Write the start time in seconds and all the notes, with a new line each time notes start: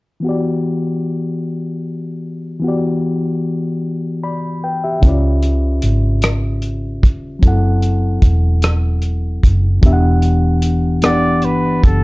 0.20 E3 B3
0.24 F#4 G4
0.29 D5
2.60 E3 B3
2.64 F#4 G4
2.68 D5
4.23 D5 B5
4.64 B4 G5
4.84 G4 E5
5.00 C#2 C#3 C#4, kick, closed hi-hat
5.04 E4 B4
5.08 F4 D5
5.43 closed hi-hat
5.82 G#1, closed hi-hat
6.22 cross-stick, closed hi-hat
6.62 closed hi-hat
7.03 D#1, kick, closed hi-hat
7.39 F#1 F#3 C4 E4, kick, closed hi-hat
7.45 A4 F#5
7.82 closed hi-hat
8.22 E1, kick, closed hi-hat
8.62 cross-stick, closed hi-hat
9.02 closed hi-hat
9.43 F#1, kick, closed hi-hat
9.81 E1 E3 B3 D4 G4, kick, closed hi-hat
9.86 E5
9.93 F#5
10.22 closed hi-hat
10.62 closed hi-hat
11.02 E3 B3 D4 G4 D5 F#5, cross-stick, closed hi-hat
11.42 G1 B4, closed hi-hat
11.84 F#1 A4, kick, closed hi-hat